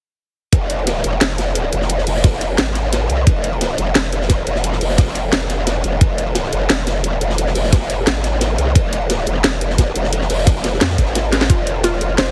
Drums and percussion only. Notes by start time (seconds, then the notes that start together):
0.53 kick, closed hi-hat, ride
0.70 closed hi-hat, ride
0.79 ride
0.87 snare, closed hi-hat, ride
0.96 snare
1.04 closed hi-hat, ride
1.12 ride
1.21 snare, closed hi-hat
1.29 ride
1.38 snare, closed hi-hat, ride
1.47 snare
1.55 closed hi-hat, ride
1.64 ride
1.72 closed hi-hat, ride
1.82 snare
1.89 closed hi-hat, ride
1.98 snare
2.07 snare, closed hi-hat, open hi-hat
2.16 snare
2.24 kick, snare, closed hi-hat, ride
2.33 snare
2.41 snare, closed hi-hat, ride
2.58 snare, closed hi-hat
2.75 snare, closed hi-hat, ride
2.93 snare, closed hi-hat, ride
3.01 ride
3.09 closed hi-hat, ride
3.27 kick, closed hi-hat, ride
3.44 closed hi-hat, ride
3.53 ride
3.61 snare, closed hi-hat, ride
3.70 snare
3.78 closed hi-hat, ride
3.87 ride
3.95 snare, closed hi-hat
4.04 ride
4.12 closed hi-hat, ride
4.21 snare
4.29 kick, snare, closed hi-hat, ride
4.46 closed hi-hat, ride
4.55 snare
4.64 closed hi-hat, ride
4.72 snare
4.81 snare, closed hi-hat, open hi-hat
4.89 snare
4.98 kick, snare, closed hi-hat, ride
5.07 snare
5.15 snare, closed hi-hat, ride
5.33 snare, closed hi-hat, ride
5.50 snare, closed hi-hat, ride
5.67 snare, closed hi-hat, ride
5.76 ride
5.84 closed hi-hat, ride
6.01 kick, closed hi-hat, ride
6.18 closed hi-hat, ride
6.27 ride
6.35 snare, closed hi-hat, ride
6.44 snare
6.53 closed hi-hat, ride
6.61 ride
6.70 snare, closed hi-hat, ride
6.78 ride
6.87 snare, closed hi-hat, ride
6.95 snare
7.04 closed hi-hat, ride
7.12 ride
7.21 closed hi-hat, ride
7.30 snare
7.38 closed hi-hat, ride
7.46 snare
7.55 snare, closed hi-hat, open hi-hat
7.64 snare
7.72 kick, snare, closed hi-hat, ride
7.81 snare
7.90 snare, closed hi-hat, ride
8.07 snare, closed hi-hat, ride
8.24 snare, closed hi-hat, ride
8.41 snare, closed hi-hat, ride
8.50 ride
8.58 closed hi-hat, ride
8.75 kick, closed hi-hat, ride
8.93 closed hi-hat, ride
9.01 ride
9.10 snare, closed hi-hat, ride
9.18 snare
9.26 closed hi-hat, ride
9.36 ride
9.44 snare, closed hi-hat, ride
9.53 ride
9.61 closed hi-hat, ride
9.70 snare
9.78 kick, snare, closed hi-hat, ride
9.96 closed hi-hat, ride
10.04 snare
10.13 closed hi-hat, ride
10.21 snare
10.30 snare, closed hi-hat, open hi-hat
10.38 snare
10.46 kick, snare, closed hi-hat, ride
10.56 snare
10.64 snare, closed hi-hat, ride
10.73 snare
10.81 snare, closed hi-hat, ride
10.90 snare, ride
10.98 kick, snare, closed hi-hat
11.06 snare, ride
11.15 snare, closed hi-hat, ride
11.24 snare
11.32 snare, closed hi-hat, ride
11.41 snare, ride
11.50 kick, closed hi-hat, ride
11.67 closed hi-hat, ride
11.76 ride
11.83 snare, closed hi-hat, ride
11.93 snare
12.01 closed hi-hat, ride
12.09 ride
12.18 snare, closed hi-hat, ride
12.27 ride